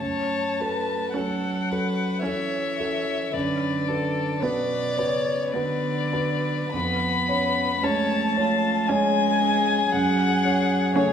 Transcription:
Already playing: A3 A5
0.00 F#2 C#5
0.60 F#4 A4 B4
1.13 F#3 C#4 F#4 A4 F#5
1.71 F#4 A4 B4
2.23 E3 C#4 F#4 A4 C#5 E5
2.80 F#4 A4
3.31 F#2 D3 B4 D5
3.88 F#4 A4 B4
4.40 B2 B3 F#4 B4 D5
4.44 B4
4.97 C#3 F#4 B4 C#5
5.52 D3 B3 F#4 B4 D5
6.13 F#4 B4
6.72 F2 B3 B5
7.29 C#4 C#5
7.82 G#3 A3 C#4 C#5 A5
8.37 C#4 F4 C#5
8.87 G#3 C#4 C#5 G#5
8.91 G#4
9.41 C#4 C#5
9.92 F#2 F#3 F#5
10.45 C#4 C#5
10.93 C#3 A3 C#4 C#5
10.98 C#4 C#5

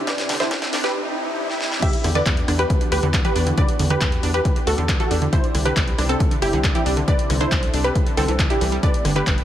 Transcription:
Already playing: C3 C4 D4 E4 G4, riser
0.07 D3 B4 D5, kick, snare, closed hi-hat
0.18 snare, closed hi-hat
0.29 C2 D3, snare, open hi-hat
0.40 D3 E4 C5, snare, closed hi-hat
0.51 C2, kick, snare, closed hi-hat
0.62 snare, closed hi-hat
0.73 C2 D4, snare, open hi-hat
0.84 G4 B4, snare, closed hi-hat
0.95 swell
1.50 snare
1.61 snare
1.72 snare
1.82 D3 E3 B3 D4 F#4 G4 E5, kick, closed hi-hat, crash
1.93 closed hi-hat
2.04 E2 D3, cross-stick, open hi-hat
2.15 D3 B4 D5, closed hi-hat
2.26 E2, kick, clap, closed hi-hat
2.37 closed hi-hat
2.48 E2 D4, cross-stick, open hi-hat
2.59 G4 B4, closed hi-hat
2.70 kick, closed hi-hat
2.81 D3, closed hi-hat
2.92 D2 G4 B4, open hi-hat
3.03 E2 D3, closed hi-hat
3.14 D3, kick, clap, closed hi-hat
3.25 E3 G4 B4, closed hi-hat
3.36 E2 D4, open hi-hat
3.47 D3, closed hi-hat
3.58 D3 B4 D5, kick, closed hi-hat
3.69 closed hi-hat
3.79 E2 D3, open hi-hat
3.90 D3 G4 B4
4.01 E2, kick, clap, closed hi-hat
4.12 closed hi-hat
4.23 E2 D4, open hi-hat
4.34 G4 B4, closed hi-hat
4.45 kick, closed hi-hat
4.56 D3, closed hi-hat
4.67 D2 F#4 A4, open hi-hat
4.78 E2 D3, closed hi-hat
4.89 D3, kick, clap, closed hi-hat
5.00 E3 F#4 A4, closed hi-hat
5.11 E2 D4, open hi-hat
5.22 D3, closed hi-hat
5.33 C3 D3 C4 E4 C5, kick, closed hi-hat
5.44 closed hi-hat
5.55 C2 D3, cross-stick, open hi-hat
5.65 D3 G4 B4, closed hi-hat
5.76 C2, kick, clap, closed hi-hat
5.88 closed hi-hat
5.98 C2 D4, cross-stick, open hi-hat
6.09 C4 A4, closed hi-hat
6.20 kick, closed hi-hat
6.31 D3, closed hi-hat
6.42 G1 E4 G4, open hi-hat
6.53 C2 D3, closed hi-hat
6.64 D3, kick, clap, closed hi-hat
6.75 E3 E4 G4, closed hi-hat
6.86 C2 D4, open hi-hat
6.97 D3, closed hi-hat
7.08 D3 A4 B4 D5, kick, closed hi-hat
7.19 closed hi-hat
7.30 C2 D3, cross-stick, open hi-hat
7.41 D3 E4 C5, closed hi-hat
7.52 C2, kick, clap, closed hi-hat
7.63 closed hi-hat
7.74 C2 D4, open hi-hat
7.84 G4 B4, closed hi-hat
7.95 kick, closed hi-hat
8.06 D3, closed hi-hat
8.17 C2 D3 C4 A4, open hi-hat
8.28 C2 E3, closed hi-hat
8.39 E3, kick, clap, closed hi-hat
8.50 D4 E4 G4, closed hi-hat
8.61 C2 E3, open hi-hat
8.72 G3, closed hi-hat
8.83 D3 A3 B3 G4 B4 D5, kick, closed hi-hat
8.94 closed hi-hat
9.05 G1 D3, cross-stick, open hi-hat
9.16 D3 G4 B4, closed hi-hat
9.27 G1, kick, clap, closed hi-hat
9.38 closed hi-hat

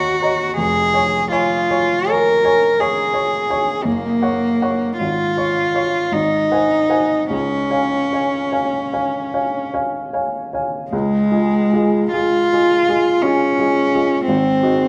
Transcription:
Already playing: D#2 F#4 C#5 D#5 A#5
0.22 C#5 D#5 A#5
0.57 F1 G#4
0.94 C#5 G#5 C#6
1.32 F4 C#5 G#5 C#6
1.71 C#5 G#5 C#6
2.08 A#4 C#5 G#5 C#6
2.45 C#5 G#5 C#6
2.80 G#4 C#5 G#5 C#6
3.14 C#5 G#5 C#6
3.50 C#5 G#5 C#6
3.85 F#1 A#3
4.22 C#5 F#5 C#6
4.62 C#5 F#5 C#6
4.98 G#1 F4
5.37 C#5 F5 C#6
5.75 C#5 F5 C#6
6.12 G#1 D#4
6.52 C5 F#5 G#5
6.89 C5 F#5 G#5
7.30 C#2 C#4
7.70 C#5 F5 G#5
8.13 C#5 F5 G#5
8.52 C#5 F5 G#5
8.93 C#5 F5 G#5
9.34 C#5 F5 G#5
9.74 C#5 F5 G#5
10.13 C#5 F5 G#5
10.53 C#5 F5 G#5
10.91 C#2 G#3
11.32 G#3 F4 G#4
11.73 G#3 F4 G#4
12.12 G#3 F4 G#4
12.53 G#3 F4 G#4
12.88 G#3 F4 G#4
13.22 G#3 C#4 F4 G#4
13.58 G#3 F4 G#4
13.95 G#3 F4 G#4
14.25 G#1 C4
14.63 G#3 D#4 F#4

